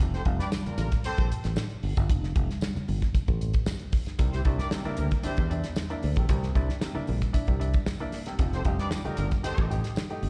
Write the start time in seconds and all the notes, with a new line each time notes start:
0.00 F1, kick, muted conga, low conga
0.14 C4 G4 A4 C5, snare, closed hi-hat
0.25 F1, kick, closed hi-hat, high conga
0.39 D4 G4 B4 D5, snare, closed hi-hat, high conga
0.52 snare, tambourine, muted conga, high conga
0.66 A#3 D4 F4 A#4, muted fingered electric bass stroke, closed hi-hat, low conga
0.78 A1 A#3 D4 F4 A#4, closed hi-hat, high conga, low conga
0.92 kick, snare, closed hi-hat
1.04 C4 G4 A4 C5, closed hi-hat
1.18 A#1, kick, closed hi-hat
1.31 closed hi-hat, muted conga
1.44 A1, snare, closed hi-hat
1.56 snare, tambourine, muted conga
1.70 closed hi-hat
1.83 G1, open hi-hat
1.97 G1, kick, closed hi-hat
2.10 F1, kick, closed hi-hat, low conga
2.24 snare, closed hi-hat
2.35 F1, kick, closed hi-hat, muted conga, high conga
2.49 snare, closed hi-hat, high conga
2.61 snare, tambourine, muted conga, high conga
2.76 muted fingered electric bass stroke, closed hi-hat, low conga
2.88 G1, open hi-hat, muted conga, high conga, low conga
3.02 kick, snare, closed hi-hat
3.14 muted fingered electric bass stroke, kick, closed hi-hat, muted conga
3.28 A1, kick, closed hi-hat
3.41 closed hi-hat, muted conga
3.54 kick, closed hi-hat
3.66 snare, tambourine
3.79 closed hi-hat
3.92 kick, snare, open hi-hat
4.06 snare, closed hi-hat
4.19 C2 C3 G3, kick, closed hi-hat, low conga
4.32 C4 E4 G4 C5, snare, closed hi-hat
4.45 C2 D4 E4, kick, closed hi-hat, high conga
4.59 D4 G4 A#4 D5, snare, closed hi-hat, high conga
4.71 C3 G3, snare, tambourine, muted conga, high conga
4.85 A#3 D4 E4 G4 A#4, muted fingered electric bass stroke, closed hi-hat, low conga
4.97 D2 A#3 D4 E4 G4 A#4, closed hi-hat, high conga, low conga
5.11 kick, snare, closed hi-hat
5.23 C4 D4 E4 G4 C5, muted fingered electric bass stroke, closed hi-hat
5.37 E2 C3 G3, kick, closed hi-hat
5.50 D4 E4, closed hi-hat, muted conga
5.64 snare, closed hi-hat
5.76 snare, tambourine, muted conga
5.90 A#3 D4 E4, closed hi-hat
6.03 D2, open hi-hat, muted conga
6.16 A#1 C3 G3, kick, closed hi-hat
6.29 C2 C3 G3, kick, closed hi-hat, muted conga, low conga
6.43 snare, closed hi-hat
6.55 C2 D4 E4, kick, closed hi-hat, high conga
6.69 snare, closed hi-hat, high conga
6.81 C3 G3, snare, tambourine, muted conga, high conga
6.95 A#3 D4 E4, muted fingered electric bass stroke, low conga
7.07 A#1 D4 E4, open hi-hat, muted conga, high conga, low conga
7.22 kick, snare, closed hi-hat
7.33 D4 E4, muted fingered electric bass stroke, kick, closed hi-hat
7.47 C2 C3 G3, kick, closed hi-hat
7.60 D4 E4, closed hi-hat
7.74 kick, closed hi-hat
7.86 snare, tambourine
8.00 A#3 D4 E4, closed hi-hat
8.12 snare, open hi-hat, muted conga
8.26 C3 G3, snare, closed hi-hat
8.39 F1 F3, kick, closed hi-hat, low conga
8.53 C4 G4 A4 C5, snare, closed hi-hat
8.65 F1 D#4 G4, kick, closed hi-hat, high conga
8.79 D4 G4 B4 D5, snare, closed hi-hat, high conga
8.91 F3, snare, tambourine, high conga
9.05 A3 A#3 D4 D#4 F4 G4 A#4, muted fingered electric bass stroke, closed hi-hat, low conga
9.17 G1 A#3 D4 D#4 F4 G4 A#4, closed hi-hat, high conga, low conga
9.31 kick, snare, closed hi-hat
9.43 C4 D#4 G4 A4 C5, muted fingered electric bass stroke, closed hi-hat, muted conga
9.57 A1 F3, kick, closed hi-hat
9.70 D#4 G4, closed hi-hat
9.84 snare, closed hi-hat
9.96 snare, tambourine, muted conga
10.10 A3 D#4 G4, closed hi-hat
10.23 G1, open hi-hat